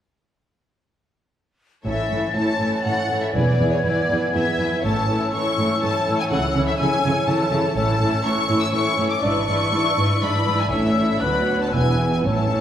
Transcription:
1.84 A1 A2 E3 C#4 E4 A4 C#5 E5 A6
2.10 A2 E3 E4 A4 C#5
2.35 A2 E3 E4 A4 C#5 A5
2.59 A2 E3 E4 A4 C#5
2.84 A2 E3 E4 A4 C#5 F#5
3.10 A2 E3 E4 A4 C#5
3.22 E5
3.34 E1 E2 E3 B3 E4 G#4 B4 D5 G#6
3.59 E2 E3 E4 G#4 B4
3.71 C#5
3.84 E2 E3 E4 G#4 B4 D5
4.10 E2 E3 E4 G#4 B4
4.33 E2 E3 E4 G#4 B4 E5
4.58 E2 E3 E4 G#4 B4
4.82 A1 A2 E3 C#4 E4 A4 C#5 A5 E6
5.08 A2 E3 E4 A4 C#5
5.32 A2 E3 E4 A4 C#5 C#6
5.56 A2 E3 E4 A4 C#5
5.79 A2 E3 E4 A4 C#5 A5
6.05 A2 E3 E4 A4 C#5
6.20 G#5
6.29 C#2 C#3 E3 E4 A4 C#5 F#5
6.54 C#3 E3 E4 A4 C#5
6.67 E5
6.78 C#3 E3 E4 A4 C#5 G#5
7.02 C#3 E3 E4 A4 C#5
7.27 C#3 E3 E4 A4 C#5 A5
7.51 C#3 E3 E4 A4 C#5
7.75 A1 A2 E3 C#4 E4 A4 C#5 A5 E6
7.99 A2 E3 E4 A4 C#5
8.24 A2 E3 C#4 E4 A4 C#5 C#6 E6
8.48 A2 E3 E4 A4 C#5
8.61 E6
8.72 A2 E3 C#4 E4 A4 C#5 C#6 E6
8.97 A2 E3 E4 A4 C#5
9.10 D6
9.21 G#1 G#2 E3 D4 E4 B4 D5 C#6 E6
9.47 G#2 E3 E4 B4 D5
9.72 G#2 E3 E4 B4 D5
9.97 G#2 E3 E4 B4 D5
10.21 G#2 E3 D4 E4 B4 D5 B5 E6
10.46 G#2 E3 E4 B4 D5
10.60 G#5
10.71 A1 A2 E3 C#4 E4 A4 C#5 E5 E6
11.21 D2 F#3 B3 D4 B4 D5 B5 F#6
11.47 C#5
11.62 A5
11.72 E1 E2 E3 B3 E4 B4 G#5 E6
12.13 G#5
12.25 A1 A2 E3 C#4 E4 A4 C#5 A5 E6

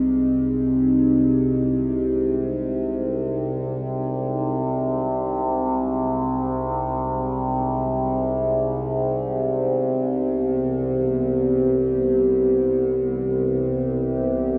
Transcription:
Already playing: C2 C3 C4 D#4 G#4 D#5
9.31 B3
9.58 E4
12.56 G4
13.91 D5

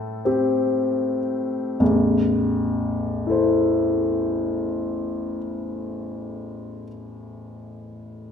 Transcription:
Already playing: A2 A3 A4 E5 A5
0.25 C4 G4
1.80 A1 E2
3.27 E4 A4
3.31 C5

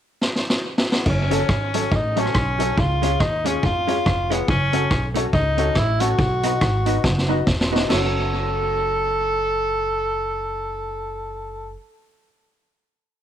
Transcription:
0.21 snare
0.36 snare
0.50 snare
0.78 snare
0.91 B3, snare
1.06 F#1 C#4, kick, crash
1.30 F#3 A3 C#4 F#4 A4 C#5, closed hi-hat
1.49 G#1, kick, cross-stick
1.74 F#3 A3 C#4 F#4 A4 C#5, closed hi-hat
1.92 A1 D#4 A4 C#5, kick
2.16 F#3 A3 C#4 F#4 A4 C#5, closed hi-hat
2.25 cross-stick
2.34 B1, kick, cross-stick
2.59 F#3 A3 C#4 F#4 A4 C#5, closed hi-hat
2.78 C#2 F4, kick
3.02 G#3 C#4 F4 G#4 C#5, closed hi-hat
3.20 D#2 D#4, kick, cross-stick
3.45 G#3 C#4 F4 G#4 C#5, closed hi-hat
3.63 F2 F4, kick
3.87 G#3 C#4 F4 G#4 C#5, closed hi-hat
4.06 F1, kick, cross-stick
4.30 G#3 B3 C#4 F4 G#4 C#5, closed hi-hat
4.48 F#1 C#4, kick
4.73 A3 C#4 F#4 A4 C#5, closed hi-hat
4.91 B1, kick, cross-stick
5.14 A3 C#4 F#4 A4 C#5, closed hi-hat
5.33 C#2 D#4 A4 C#5, kick
5.57 A3 C#4 F#4 A4 C#5, closed hi-hat
5.75 A1 E4, kick, cross-stick
6.00 A3 C#4 F#4 A4 C#5, closed hi-hat
6.19 B1, kick
6.43 B3 D#4 F#4 B4 D#5, closed hi-hat
6.61 G#1, kick, cross-stick
6.86 B3 D#4 F#4 B4 D#5, closed hi-hat
7.04 F#1, kick, snare
7.18 snare
7.28 B3 D#4 F#4 B4 D#5
7.46 E1, kick, snare
7.61 snare
7.71 B3 D#4 F#4 B4 D#5
7.76 snare
7.88 F#1 A3 C#4 F#4 A4 C#5, snare, crash
7.93 A4

